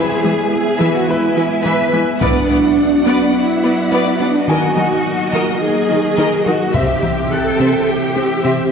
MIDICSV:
0, 0, Header, 1, 9, 480
1, 0, Start_track
1, 0, Tempo, 566038
1, 1883, Time_signature, 4, 2, 24, 8
1, 7393, End_track
2, 0, Start_track
2, 0, Title_t, "Violin section"
2, 0, Program_c, 0, 48
2, 0, Note_on_c, 0, 80, 53
2, 1850, Note_off_c, 0, 80, 0
2, 1887, Note_on_c, 0, 78, 54
2, 3771, Note_off_c, 0, 78, 0
2, 3803, Note_on_c, 0, 75, 49
2, 5723, Note_off_c, 0, 75, 0
2, 5724, Note_on_c, 0, 79, 53
2, 7393, Note_off_c, 0, 79, 0
2, 7393, End_track
3, 0, Start_track
3, 0, Title_t, "Grand piano"
3, 0, Program_c, 1, 0
3, 0, Note_on_c, 1, 74, 45
3, 0, Note_on_c, 1, 91, 50
3, 114, Control_c, 1, 64, 127
3, 166, Note_off_c, 1, 91, 0
3, 649, Note_off_c, 1, 74, 0
3, 937, Note_on_c, 1, 71, 55
3, 1899, Control_c, 1, 64, 0
3, 2048, Control_c, 1, 64, 127
3, 2336, Note_off_c, 1, 71, 0
3, 3809, Note_on_c, 1, 80, 54
3, 3819, Control_c, 1, 64, 0
3, 3970, Control_c, 1, 64, 127
3, 5212, Note_off_c, 1, 80, 0
3, 5726, Note_on_c, 1, 76, 49
3, 5740, Control_c, 1, 64, 0
3, 5887, Control_c, 1, 64, 127
3, 6206, Note_on_c, 1, 90, 41
3, 7131, Note_off_c, 1, 76, 0
3, 7393, Note_off_c, 1, 90, 0
3, 7393, End_track
4, 0, Start_track
4, 0, Title_t, "Violin section"
4, 0, Program_c, 2, 48
4, 0, Note_on_c, 2, 71, 55
4, 0, Note_on_c, 2, 76, 50
4, 182, Note_off_c, 2, 71, 0
4, 182, Note_off_c, 2, 76, 0
4, 191, Note_on_c, 2, 71, 44
4, 194, Note_on_c, 2, 76, 40
4, 259, Note_off_c, 2, 71, 0
4, 262, Note_off_c, 2, 76, 0
4, 670, Note_on_c, 2, 71, 50
4, 670, Note_on_c, 2, 76, 51
4, 900, Note_off_c, 2, 71, 0
4, 900, Note_off_c, 2, 76, 0
4, 1156, Note_on_c, 2, 71, 50
4, 1160, Note_on_c, 2, 76, 47
4, 1224, Note_off_c, 2, 71, 0
4, 1228, Note_off_c, 2, 76, 0
4, 1398, Note_on_c, 2, 71, 62
4, 1400, Note_on_c, 2, 76, 53
4, 1624, Note_off_c, 2, 71, 0
4, 1625, Note_off_c, 2, 76, 0
4, 1635, Note_on_c, 2, 71, 51
4, 1637, Note_on_c, 2, 76, 49
4, 1703, Note_off_c, 2, 71, 0
4, 1704, Note_off_c, 2, 76, 0
4, 1872, Note_on_c, 2, 74, 59
4, 1873, Note_on_c, 2, 71, 63
4, 2100, Note_off_c, 2, 74, 0
4, 2101, Note_off_c, 2, 71, 0
4, 2110, Note_on_c, 2, 71, 42
4, 2114, Note_on_c, 2, 74, 43
4, 2178, Note_off_c, 2, 71, 0
4, 2182, Note_off_c, 2, 74, 0
4, 2599, Note_on_c, 2, 74, 61
4, 2600, Note_on_c, 2, 71, 63
4, 2824, Note_off_c, 2, 74, 0
4, 2825, Note_off_c, 2, 71, 0
4, 3081, Note_on_c, 2, 71, 51
4, 3083, Note_on_c, 2, 74, 48
4, 3149, Note_off_c, 2, 71, 0
4, 3151, Note_off_c, 2, 74, 0
4, 3320, Note_on_c, 2, 71, 53
4, 3324, Note_on_c, 2, 74, 57
4, 3545, Note_off_c, 2, 71, 0
4, 3547, Note_off_c, 2, 74, 0
4, 3566, Note_on_c, 2, 71, 43
4, 3570, Note_on_c, 2, 74, 43
4, 3634, Note_off_c, 2, 71, 0
4, 3638, Note_off_c, 2, 74, 0
4, 3802, Note_on_c, 2, 70, 55
4, 3805, Note_on_c, 2, 75, 59
4, 4026, Note_off_c, 2, 70, 0
4, 4028, Note_off_c, 2, 75, 0
4, 4044, Note_on_c, 2, 75, 43
4, 4047, Note_on_c, 2, 70, 42
4, 4112, Note_off_c, 2, 75, 0
4, 4115, Note_off_c, 2, 70, 0
4, 4511, Note_on_c, 2, 75, 59
4, 4514, Note_on_c, 2, 70, 56
4, 4740, Note_off_c, 2, 75, 0
4, 4742, Note_off_c, 2, 70, 0
4, 4997, Note_on_c, 2, 70, 45
4, 4998, Note_on_c, 2, 75, 50
4, 5065, Note_off_c, 2, 70, 0
4, 5066, Note_off_c, 2, 75, 0
4, 5230, Note_on_c, 2, 75, 56
4, 5237, Note_on_c, 2, 70, 51
4, 5456, Note_off_c, 2, 75, 0
4, 5461, Note_off_c, 2, 70, 0
4, 5466, Note_on_c, 2, 75, 44
4, 5471, Note_on_c, 2, 70, 42
4, 5534, Note_off_c, 2, 75, 0
4, 5539, Note_off_c, 2, 70, 0
4, 5710, Note_on_c, 2, 76, 51
4, 5711, Note_on_c, 2, 72, 53
4, 5940, Note_off_c, 2, 72, 0
4, 5940, Note_off_c, 2, 76, 0
4, 5960, Note_on_c, 2, 72, 37
4, 5960, Note_on_c, 2, 76, 42
4, 6028, Note_off_c, 2, 72, 0
4, 6028, Note_off_c, 2, 76, 0
4, 6437, Note_on_c, 2, 72, 53
4, 6440, Note_on_c, 2, 76, 45
4, 6663, Note_off_c, 2, 72, 0
4, 6665, Note_off_c, 2, 76, 0
4, 6913, Note_on_c, 2, 72, 44
4, 6916, Note_on_c, 2, 76, 42
4, 6981, Note_off_c, 2, 72, 0
4, 6984, Note_off_c, 2, 76, 0
4, 7157, Note_on_c, 2, 72, 45
4, 7158, Note_on_c, 2, 76, 50
4, 7383, Note_off_c, 2, 72, 0
4, 7384, Note_off_c, 2, 76, 0
4, 7393, End_track
5, 0, Start_track
5, 0, Title_t, "Cello section"
5, 0, Program_c, 3, 48
5, 0, Note_on_c, 3, 68, 75
5, 430, Note_off_c, 3, 68, 0
5, 440, Note_on_c, 3, 68, 75
5, 795, Note_off_c, 3, 68, 0
5, 804, Note_on_c, 3, 66, 63
5, 919, Note_on_c, 3, 64, 74
5, 921, Note_off_c, 3, 66, 0
5, 1400, Note_on_c, 3, 71, 74
5, 1401, Note_off_c, 3, 64, 0
5, 1642, Note_off_c, 3, 71, 0
5, 1882, Note_on_c, 3, 62, 73
5, 2809, Note_off_c, 3, 62, 0
5, 2841, Note_on_c, 3, 64, 77
5, 3548, Note_off_c, 3, 64, 0
5, 3562, Note_on_c, 3, 62, 70
5, 3801, Note_on_c, 3, 66, 69
5, 3803, Note_off_c, 3, 62, 0
5, 4760, Note_on_c, 3, 68, 74
5, 4763, Note_off_c, 3, 66, 0
5, 5467, Note_off_c, 3, 68, 0
5, 5475, Note_on_c, 3, 66, 65
5, 5714, Note_off_c, 3, 66, 0
5, 5718, Note_on_c, 3, 67, 63
5, 6197, Note_on_c, 3, 69, 67
5, 6201, Note_off_c, 3, 67, 0
5, 6676, Note_on_c, 3, 67, 74
5, 6680, Note_off_c, 3, 69, 0
5, 7393, Note_off_c, 3, 67, 0
5, 7393, End_track
6, 0, Start_track
6, 0, Title_t, "Analog synth pad"
6, 0, Program_c, 4, 89
6, 0, Note_on_c, 4, 56, 59
6, 0, Note_on_c, 4, 59, 60
6, 0, Note_on_c, 4, 64, 62
6, 0, Note_on_c, 4, 76, 61
6, 1882, Note_off_c, 4, 64, 0
6, 1882, Note_off_c, 4, 76, 0
6, 1883, Note_off_c, 4, 56, 0
6, 1887, Note_on_c, 4, 54, 68
6, 1890, Note_on_c, 4, 66, 57
6, 1892, Note_on_c, 4, 74, 70
6, 3804, Note_off_c, 4, 59, 0
6, 3806, Note_on_c, 4, 63, 66
6, 3807, Note_off_c, 4, 66, 0
6, 3808, Note_off_c, 4, 74, 0
6, 3808, Note_on_c, 4, 58, 66
6, 3808, Note_on_c, 4, 75, 64
6, 5723, Note_on_c, 4, 52, 68
6, 5723, Note_on_c, 4, 60, 66
6, 5725, Note_off_c, 4, 54, 0
6, 5725, Note_off_c, 4, 63, 0
6, 5725, Note_on_c, 4, 67, 62
6, 5725, Note_on_c, 4, 76, 62
6, 5726, Note_off_c, 4, 58, 0
6, 5726, Note_off_c, 4, 75, 0
6, 7393, Note_off_c, 4, 52, 0
6, 7393, Note_off_c, 4, 60, 0
6, 7393, Note_off_c, 4, 67, 0
6, 7393, Note_off_c, 4, 76, 0
6, 7393, End_track
7, 0, Start_track
7, 0, Title_t, "Viola section"
7, 0, Program_c, 5, 48
7, 199, Note_on_c, 5, 52, 42
7, 267, Note_off_c, 5, 52, 0
7, 674, Note_on_c, 5, 52, 63
7, 742, Note_off_c, 5, 52, 0
7, 1155, Note_on_c, 5, 52, 51
7, 1222, Note_off_c, 5, 52, 0
7, 1396, Note_on_c, 5, 52, 61
7, 1464, Note_off_c, 5, 52, 0
7, 1644, Note_on_c, 5, 52, 47
7, 1711, Note_off_c, 5, 52, 0
7, 1882, Note_on_c, 5, 59, 63
7, 1950, Note_off_c, 5, 59, 0
7, 2125, Note_on_c, 5, 59, 42
7, 2192, Note_off_c, 5, 59, 0
7, 2603, Note_on_c, 5, 59, 66
7, 2671, Note_off_c, 5, 59, 0
7, 3085, Note_on_c, 5, 59, 45
7, 3153, Note_off_c, 5, 59, 0
7, 3328, Note_on_c, 5, 59, 58
7, 3396, Note_off_c, 5, 59, 0
7, 3569, Note_on_c, 5, 59, 45
7, 3637, Note_off_c, 5, 59, 0
7, 3809, Note_on_c, 5, 51, 64
7, 3876, Note_off_c, 5, 51, 0
7, 4044, Note_on_c, 5, 51, 45
7, 4112, Note_off_c, 5, 51, 0
7, 4528, Note_on_c, 5, 51, 60
7, 4595, Note_off_c, 5, 51, 0
7, 5010, Note_on_c, 5, 51, 45
7, 5078, Note_off_c, 5, 51, 0
7, 5240, Note_on_c, 5, 51, 61
7, 5308, Note_off_c, 5, 51, 0
7, 5486, Note_on_c, 5, 51, 47
7, 5554, Note_off_c, 5, 51, 0
7, 5728, Note_on_c, 5, 60, 57
7, 5796, Note_off_c, 5, 60, 0
7, 5961, Note_on_c, 5, 60, 41
7, 6028, Note_off_c, 5, 60, 0
7, 6442, Note_on_c, 5, 60, 58
7, 6510, Note_off_c, 5, 60, 0
7, 6923, Note_on_c, 5, 60, 39
7, 6991, Note_off_c, 5, 60, 0
7, 7164, Note_on_c, 5, 60, 50
7, 7232, Note_off_c, 5, 60, 0
7, 7393, End_track
8, 0, Start_track
8, 0, Title_t, "Synth arpeggio sound"
8, 0, Program_c, 6, 84
8, 0, Note_on_c, 6, 52, 75
8, 107, Note_off_c, 6, 52, 0
8, 206, Note_on_c, 6, 56, 49
8, 349, Note_off_c, 6, 56, 0
8, 685, Note_on_c, 6, 52, 72
8, 829, Note_off_c, 6, 52, 0
8, 1166, Note_on_c, 6, 64, 50
8, 1309, Note_off_c, 6, 64, 0
8, 1404, Note_on_c, 6, 52, 72
8, 1548, Note_off_c, 6, 52, 0
8, 1639, Note_on_c, 6, 56, 54
8, 1784, Note_off_c, 6, 56, 0
8, 1883, Note_on_c, 6, 59, 78
8, 2027, Note_off_c, 6, 59, 0
8, 2124, Note_on_c, 6, 62, 58
8, 2268, Note_off_c, 6, 62, 0
8, 2601, Note_on_c, 6, 59, 71
8, 2746, Note_off_c, 6, 59, 0
8, 3086, Note_on_c, 6, 71, 50
8, 3229, Note_off_c, 6, 71, 0
8, 3323, Note_on_c, 6, 59, 59
8, 3467, Note_off_c, 6, 59, 0
8, 3563, Note_on_c, 6, 62, 50
8, 3707, Note_off_c, 6, 62, 0
8, 3798, Note_on_c, 6, 51, 78
8, 3944, Note_off_c, 6, 51, 0
8, 4045, Note_on_c, 6, 54, 52
8, 4188, Note_off_c, 6, 54, 0
8, 4522, Note_on_c, 6, 51, 71
8, 4666, Note_off_c, 6, 51, 0
8, 4999, Note_on_c, 6, 63, 51
8, 5144, Note_off_c, 6, 63, 0
8, 5242, Note_on_c, 6, 51, 71
8, 5386, Note_off_c, 6, 51, 0
8, 5480, Note_on_c, 6, 54, 52
8, 5625, Note_off_c, 6, 54, 0
8, 5720, Note_on_c, 6, 48, 78
8, 5865, Note_off_c, 6, 48, 0
8, 5961, Note_on_c, 6, 52, 57
8, 6106, Note_off_c, 6, 52, 0
8, 6441, Note_on_c, 6, 48, 65
8, 6586, Note_off_c, 6, 48, 0
8, 6921, Note_on_c, 6, 60, 49
8, 7066, Note_off_c, 6, 60, 0
8, 7163, Note_on_c, 6, 48, 62
8, 7307, Note_off_c, 6, 48, 0
8, 7393, End_track
9, 0, Start_track
9, 0, Title_t, "Taiko and cinematic ensemble drums"
9, 1881, Note_on_c, 9, 41, 50
9, 1966, Note_off_c, 9, 41, 0
9, 5718, Note_on_c, 9, 41, 48
9, 5802, Note_off_c, 9, 41, 0
9, 7393, End_track
0, 0, End_of_file